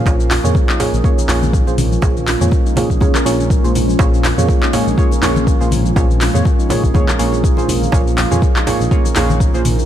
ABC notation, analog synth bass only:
X:1
M:4/4
L:1/16
Q:"Swing 16ths" 1/4=122
K:Bbm
V:1 name="Analog synth bass" clef=bass
B,,,3 F,, z3 B,,, z2 B,,,3 B,,,3 | B,,,3 F,, z3 B,,, z2 B,,,3 B,,,3 | B,,,3 F,, z3 B,,, z2 B,,,3 B,,,3 | B,,,3 F,, z3 B,,, z2 B,,,3 B,,,3 |
B,,,3 F,, z3 B,,, z2 B,,,3 B,,,3 |]